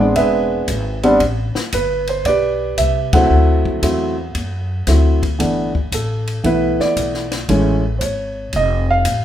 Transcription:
0.00 0.15 A1 medium
0.00 0.65 G#3 medium
0.00 0.65 B3 medium
0.00 0.65 C4 medium
0.00 0.65 D4 medium
0.16 0.67 E1 medium
0.16 1.18 G#4 medium
0.16 1.18 B4 medium
0.16 1.00 E5 medium
0.16 kick soft
0.16 ride medium
0.68 1.19 G#1 medium
0.68 kick soft
0.68 hi-hat pedal medium
0.68 ride medium
1.03 1.19 G3 medium
1.03 1.19 B3 medium
1.03 1.19 C4 medium
1.03 1.20 D4 medium
1.03 ride soft
1.20 1.53 A1 medium
1.20 kick soft
1.20 ride medium
1.55 muted upright bass stroke soft
1.55 snare medium
1.72 2.24 G1 medium
1.72 2.06 B4 medium
1.72 kick soft
1.72 hi-hat pedal medium
1.72 ride medium
2.07 2.26 C5 medium
2.07 ride soft
2.25 2.76 B1 medium
2.25 3.27 G4 medium
2.25 3.27 B4 medium
2.25 2.74 D5 medium
2.25 kick soft
2.25 ride medium
2.78 3.29 C2 medium
2.78 3.11 E5 medium
2.78 kick soft
2.78 hi-hat pedal medium
2.78 ride medium
3.13 3.79 F#3 medium
3.13 3.80 A3 medium
3.13 3.80 C4 medium
3.13 3.80 E4 medium
3.13 4.85 A4 medium
3.13 4.84 C5 medium
3.13 4.83 F#5 medium
3.13 kick medium
3.13 ride medium
3.30 3.81 D2 medium
3.66 kick soft
3.82 4.33 E2 medium
3.82 4.14 F#3 medium
3.82 4.14 A3 medium
3.82 4.15 C4 medium
3.82 4.15 E4 medium
3.82 kick soft
3.82 hi-hat pedal soft
3.82 ride medium
4.35 4.86 F#2 medium
4.35 kick soft
4.35 ride medium
4.87 5.38 D2 medium
4.87 5.19 F#3 medium
4.87 5.19 A3 soft
4.87 5.19 C4 soft
4.87 5.19 E4 medium
4.87 kick soft
4.87 snare soft
4.87 hi-hat pedal medium
4.87 ride medium
5.23 kick medium
5.23 ride soft
5.39 5.90 G1 medium
5.39 5.71 E3 medium
5.39 5.71 A3 soft
5.39 5.71 B3 soft
5.39 5.72 D4 medium
5.39 kick soft
5.39 ride medium
5.75 kick soft
5.92 6.43 A1 medium
5.92 6.42 A4 medium
5.92 kick soft
5.92 hi-hat pedal medium
5.92 ride medium
6.27 ride soft
6.44 6.77 B1 medium
6.44 7.25 E3 medium
6.44 7.25 A3 medium
6.44 7.25 B3 soft
6.44 7.25 E4 medium
6.44 6.79 B4 medium
6.44 kick soft
6.44 ride medium
6.79 7.46 D5 medium
6.79 muted upright bass stroke soft
6.79 snare soft
6.96 7.47 B1 medium
6.96 kick soft
6.96 hi-hat pedal medium
6.96 ride medium
7.14 snare soft
7.32 snare soft
7.32 ride soft
7.49 8.00 A1 medium
7.49 7.81 E3 medium
7.49 7.81 G#3 medium
7.49 7.81 A3 medium
7.49 7.81 C#4 medium
7.49 kick soft
7.49 ride medium
7.98 8.52 G#1 medium
7.98 8.02 C5 medium
7.98 8.51 C#5 medium
7.98 kick soft
7.98 hi-hat pedal medium
7.98 ride medium
8.53 9.04 F1 medium
8.53 8.89 D#5 medium
8.53 kick soft
8.53 ride medium
8.91 9.25 F5 loud
9.05 9.25 A1 medium
9.05 kick soft
9.05 hi-hat pedal medium
9.05 ride medium

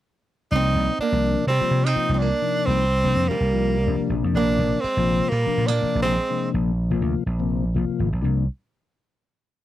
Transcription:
0.51 0.73 C2 medium
0.51 0.93 C3 medium
0.51 0.93 F3 medium
0.51 0.93 A#3 medium
0.51 0.96 D#4 medium
0.51 0.93 D5 medium
0.56 0.98 C4 medium
0.76 0.87 C2 medium
0.99 1.45 A#3 medium
0.99 1.44 D4 medium
0.99 muted slap bass stroke soft
1.12 1.34 C2 medium
1.12 1.44 C3 medium
1.12 1.44 F3 medium
1.12 1.44 A#3 medium
1.12 1.44 D4 medium
1.47 1.59 C3 medium
1.47 1.86 G3 medium
1.47 1.86 C4 medium
1.61 1.85 C3 medium
1.61 1.85 F3 medium
1.61 1.85 A#3 medium
1.61 1.85 F4 medium
1.61 muted slap bass stroke soft
1.71 1.93 C3 medium
1.85 2.13 C4 medium
1.85 2.12 D#4 medium
1.95 2.29 C3 medium
1.95 2.29 F3 medium
1.95 2.29 A#3 medium
1.95 2.29 F4 medium
1.95 muted slap bass stroke soft
2.09 2.30 C2 medium
2.09 2.20 D#4 medium
2.14 2.22 C4 medium
2.18 2.70 A#3 medium
2.18 2.67 D4 loud
2.42 2.85 C3 medium
2.42 2.85 F3 medium
2.42 2.85 A#3 medium
2.42 2.85 D#4 medium
2.66 3.01 C2 medium
2.66 3.30 G3 medium
2.66 3.30 C4 medium
3.04 3.14 C2 medium
3.04 3.36 C3 medium
3.04 3.37 F3 medium
3.04 3.36 A#3 medium
3.04 3.37 D4 medium
3.15 3.27 F2 medium
3.28 4.13 G3 medium
3.28 4.12 A#3 medium
3.28 muted slap bass stroke soft
3.40 3.83 C2 medium
3.53 3.78 C3 medium
3.53 3.78 F3 medium
3.53 3.78 A#3 medium
3.53 3.78 F4 medium
3.86 3.99 C2 medium
3.86 4.10 C3 medium
3.86 4.09 F3 medium
3.86 4.10 A#3 medium
3.86 4.11 D4 medium
4.00 muted slap bass stroke soft
4.09 4.22 A#1 medium
4.09 4.79 C3 medium
4.09 4.79 F3 medium
4.09 4.79 A#3 medium
4.09 4.80 D4 medium
4.24 4.34 F2 medium
4.34 4.57 A#1 medium
4.34 4.84 A#3 medium
4.34 4.82 D4 medium
4.59 4.71 A#1 medium
4.81 5.32 G#3 medium
4.81 5.30 C4 medium
4.81 muted slap bass stroke soft
4.97 5.19 A#1 medium
4.97 5.30 C3 medium
4.97 5.30 F3 medium
4.97 5.30 A#3 medium
4.97 5.31 F4 medium
5.29 5.44 A#2 medium
5.29 5.68 G3 medium
5.29 5.68 A#3 medium
5.46 5.71 C3 medium
5.46 5.71 F3 medium
5.46 5.71 A#3 medium
5.46 5.71 D4 medium
5.46 muted slap bass stroke soft
5.58 5.79 A#2 medium
5.66 6.04 A#3 medium
5.66 6.02 D4 medium
5.81 6.15 C3 medium
5.81 6.15 F3 medium
5.81 6.16 A#3 medium
5.81 6.15 D4 medium
5.81 muted slap bass stroke soft
5.95 6.16 A#1 medium
6.02 6.50 G#3 medium
6.02 6.49 C4 medium
6.30 6.72 C3 medium
6.30 6.72 F3 medium
6.30 6.72 A#3 medium
6.30 6.72 D4 medium
6.54 6.87 A#1 medium
6.91 7.01 A#1 medium
6.91 7.23 C3 medium
6.91 7.23 F3 medium
6.91 7.24 A#3 medium
6.91 7.24 F4 medium
7.02 7.14 D2 medium
7.16 muted slap bass stroke soft
7.26 7.70 A#1 medium
7.39 7.64 C3 medium
7.39 7.64 F3 medium
7.39 7.65 A#3 medium
7.39 7.65 C4 medium
7.74 7.87 A#1 medium
7.74 8.09 C3 medium
7.74 8.09 F3 medium
7.74 8.09 A#3 medium
7.74 8.09 F4 medium
7.89 muted slap bass stroke soft
7.99 8.11 G#1 medium
8.12 8.22 A#1 medium
8.22 8.46 C2 medium
8.22 8.45 C3 medium
8.22 8.46 F3 medium
8.22 8.45 A#3 medium
8.22 8.45 D4 medium

